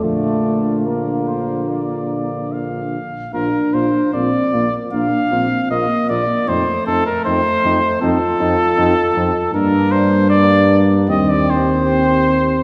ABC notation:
X:1
M:4/4
L:1/16
Q:1/4=76
K:Bb
V:1 name="Trumpet"
d4 B2 c2 d4 f4 | B2 c2 d4 f4 e2 d2 | c2 A B c4 A8 | B2 c2 d3 z e d c6 |]
V:2 name="Flugelhorn"
F12- F2 z2 | F2 F2 F2 F2 F2 F2 F2 F2 | E2 E2 E2 E2 E2 E2 E2 E2 | D4 D4 G8 |]
V:3 name="Euphonium"
D,12- D,2 z2 | D4 C2 B,2 D2 C2 B,4 | A,8 F8 | D8- D2 z2 C4 |]
V:4 name="French horn"
A,4 B,8- B,2 z2 | B,2 B,2 B,2 B,2 B,2 B,2 B,2 B,2 | C2 C2 C2 C2 C2 C2 C2 C2 | B,4 B,4 C8 |]
V:5 name="Tuba" clef=bass
B,,,12- B,,,2 z2 | B,,,2 B,,,2 B,,,2 B,,,2 B,,,2 B,,,2 B,,,2 B,,,2 | F,,2 F,,2 F,,2 F,,2 F,,2 F,,2 F,,2 F,,2 | G,,8 E,,8 |]